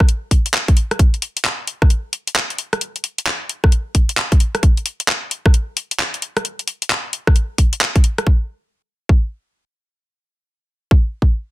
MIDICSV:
0, 0, Header, 1, 2, 480
1, 0, Start_track
1, 0, Tempo, 454545
1, 1050, Time_signature, 4, 2, 24, 8
1, 12159, End_track
2, 0, Start_track
2, 0, Title_t, "Drums"
2, 2, Note_on_c, 9, 36, 106
2, 3, Note_on_c, 9, 37, 64
2, 90, Note_on_c, 9, 42, 61
2, 107, Note_off_c, 9, 36, 0
2, 109, Note_off_c, 9, 37, 0
2, 196, Note_off_c, 9, 42, 0
2, 329, Note_on_c, 9, 36, 63
2, 330, Note_on_c, 9, 46, 95
2, 435, Note_off_c, 9, 36, 0
2, 435, Note_off_c, 9, 46, 0
2, 483, Note_on_c, 9, 42, 63
2, 569, Note_on_c, 9, 39, 120
2, 589, Note_off_c, 9, 42, 0
2, 675, Note_off_c, 9, 39, 0
2, 722, Note_on_c, 9, 36, 105
2, 722, Note_on_c, 9, 42, 49
2, 810, Note_on_c, 9, 46, 86
2, 827, Note_off_c, 9, 36, 0
2, 827, Note_off_c, 9, 42, 0
2, 915, Note_off_c, 9, 46, 0
2, 964, Note_on_c, 9, 37, 63
2, 964, Note_on_c, 9, 42, 35
2, 1049, Note_on_c, 9, 36, 115
2, 1051, Note_off_c, 9, 42, 0
2, 1051, Note_on_c, 9, 42, 62
2, 1070, Note_off_c, 9, 37, 0
2, 1154, Note_off_c, 9, 36, 0
2, 1157, Note_off_c, 9, 42, 0
2, 1203, Note_on_c, 9, 42, 35
2, 1290, Note_on_c, 9, 46, 99
2, 1308, Note_off_c, 9, 42, 0
2, 1396, Note_off_c, 9, 46, 0
2, 1443, Note_on_c, 9, 42, 62
2, 1529, Note_on_c, 9, 39, 110
2, 1549, Note_off_c, 9, 42, 0
2, 1635, Note_off_c, 9, 39, 0
2, 1768, Note_on_c, 9, 46, 86
2, 1874, Note_off_c, 9, 46, 0
2, 1921, Note_on_c, 9, 37, 63
2, 1922, Note_on_c, 9, 36, 103
2, 2009, Note_on_c, 9, 42, 64
2, 2027, Note_off_c, 9, 36, 0
2, 2027, Note_off_c, 9, 37, 0
2, 2114, Note_off_c, 9, 42, 0
2, 2248, Note_on_c, 9, 46, 100
2, 2354, Note_off_c, 9, 46, 0
2, 2402, Note_on_c, 9, 42, 64
2, 2490, Note_on_c, 9, 39, 118
2, 2507, Note_off_c, 9, 42, 0
2, 2595, Note_off_c, 9, 39, 0
2, 2643, Note_on_c, 9, 42, 52
2, 2729, Note_on_c, 9, 46, 89
2, 2749, Note_off_c, 9, 42, 0
2, 2835, Note_off_c, 9, 46, 0
2, 2882, Note_on_c, 9, 37, 64
2, 2882, Note_on_c, 9, 42, 36
2, 2970, Note_off_c, 9, 42, 0
2, 2970, Note_on_c, 9, 42, 67
2, 2988, Note_off_c, 9, 37, 0
2, 3075, Note_off_c, 9, 42, 0
2, 3123, Note_on_c, 9, 42, 36
2, 3209, Note_on_c, 9, 46, 100
2, 3228, Note_off_c, 9, 42, 0
2, 3314, Note_off_c, 9, 46, 0
2, 3362, Note_on_c, 9, 42, 67
2, 3449, Note_on_c, 9, 39, 108
2, 3468, Note_off_c, 9, 42, 0
2, 3554, Note_off_c, 9, 39, 0
2, 3690, Note_on_c, 9, 46, 89
2, 3795, Note_off_c, 9, 46, 0
2, 3841, Note_on_c, 9, 36, 100
2, 3842, Note_on_c, 9, 37, 64
2, 3929, Note_on_c, 9, 42, 64
2, 3947, Note_off_c, 9, 36, 0
2, 3947, Note_off_c, 9, 37, 0
2, 4035, Note_off_c, 9, 42, 0
2, 4168, Note_on_c, 9, 46, 101
2, 4169, Note_on_c, 9, 36, 60
2, 4274, Note_off_c, 9, 36, 0
2, 4274, Note_off_c, 9, 46, 0
2, 4321, Note_on_c, 9, 42, 66
2, 4408, Note_on_c, 9, 39, 109
2, 4427, Note_off_c, 9, 42, 0
2, 4514, Note_off_c, 9, 39, 0
2, 4561, Note_on_c, 9, 36, 98
2, 4562, Note_on_c, 9, 42, 52
2, 4649, Note_on_c, 9, 46, 92
2, 4667, Note_off_c, 9, 36, 0
2, 4667, Note_off_c, 9, 42, 0
2, 4754, Note_off_c, 9, 46, 0
2, 4801, Note_on_c, 9, 37, 63
2, 4801, Note_on_c, 9, 42, 37
2, 4888, Note_on_c, 9, 36, 110
2, 4889, Note_off_c, 9, 42, 0
2, 4889, Note_on_c, 9, 42, 68
2, 4907, Note_off_c, 9, 37, 0
2, 4994, Note_off_c, 9, 36, 0
2, 4994, Note_off_c, 9, 42, 0
2, 5042, Note_on_c, 9, 42, 36
2, 5128, Note_on_c, 9, 46, 104
2, 5147, Note_off_c, 9, 42, 0
2, 5234, Note_off_c, 9, 46, 0
2, 5280, Note_on_c, 9, 42, 65
2, 5368, Note_on_c, 9, 39, 105
2, 5386, Note_off_c, 9, 42, 0
2, 5474, Note_off_c, 9, 39, 0
2, 5609, Note_on_c, 9, 46, 93
2, 5714, Note_off_c, 9, 46, 0
2, 5761, Note_on_c, 9, 36, 101
2, 5762, Note_on_c, 9, 37, 65
2, 5850, Note_on_c, 9, 42, 69
2, 5867, Note_off_c, 9, 36, 0
2, 5868, Note_off_c, 9, 37, 0
2, 5955, Note_off_c, 9, 42, 0
2, 6090, Note_on_c, 9, 46, 106
2, 6196, Note_off_c, 9, 46, 0
2, 6244, Note_on_c, 9, 42, 68
2, 6331, Note_on_c, 9, 39, 109
2, 6350, Note_off_c, 9, 42, 0
2, 6436, Note_off_c, 9, 39, 0
2, 6485, Note_on_c, 9, 42, 55
2, 6570, Note_on_c, 9, 46, 94
2, 6590, Note_off_c, 9, 42, 0
2, 6676, Note_off_c, 9, 46, 0
2, 6723, Note_on_c, 9, 37, 66
2, 6723, Note_on_c, 9, 42, 39
2, 6810, Note_off_c, 9, 42, 0
2, 6810, Note_on_c, 9, 42, 68
2, 6828, Note_off_c, 9, 37, 0
2, 6916, Note_off_c, 9, 42, 0
2, 6962, Note_on_c, 9, 42, 37
2, 7049, Note_on_c, 9, 46, 107
2, 7068, Note_off_c, 9, 42, 0
2, 7155, Note_off_c, 9, 46, 0
2, 7202, Note_on_c, 9, 42, 67
2, 7290, Note_on_c, 9, 39, 109
2, 7308, Note_off_c, 9, 42, 0
2, 7396, Note_off_c, 9, 39, 0
2, 7530, Note_on_c, 9, 46, 94
2, 7635, Note_off_c, 9, 46, 0
2, 7681, Note_on_c, 9, 36, 103
2, 7681, Note_on_c, 9, 37, 68
2, 7769, Note_on_c, 9, 42, 66
2, 7787, Note_off_c, 9, 36, 0
2, 7787, Note_off_c, 9, 37, 0
2, 7874, Note_off_c, 9, 42, 0
2, 8008, Note_on_c, 9, 36, 59
2, 8008, Note_on_c, 9, 46, 105
2, 8114, Note_off_c, 9, 36, 0
2, 8114, Note_off_c, 9, 46, 0
2, 8161, Note_on_c, 9, 42, 67
2, 8248, Note_on_c, 9, 39, 114
2, 8266, Note_off_c, 9, 42, 0
2, 8354, Note_off_c, 9, 39, 0
2, 8401, Note_on_c, 9, 36, 100
2, 8401, Note_on_c, 9, 42, 54
2, 8489, Note_on_c, 9, 46, 97
2, 8507, Note_off_c, 9, 36, 0
2, 8507, Note_off_c, 9, 42, 0
2, 8594, Note_off_c, 9, 46, 0
2, 8642, Note_on_c, 9, 37, 68
2, 8642, Note_on_c, 9, 42, 38
2, 8729, Note_on_c, 9, 36, 106
2, 8748, Note_off_c, 9, 37, 0
2, 8748, Note_off_c, 9, 42, 0
2, 8834, Note_off_c, 9, 36, 0
2, 9602, Note_on_c, 9, 36, 93
2, 9707, Note_off_c, 9, 36, 0
2, 11522, Note_on_c, 9, 36, 99
2, 11628, Note_off_c, 9, 36, 0
2, 11849, Note_on_c, 9, 36, 57
2, 11955, Note_off_c, 9, 36, 0
2, 12159, End_track
0, 0, End_of_file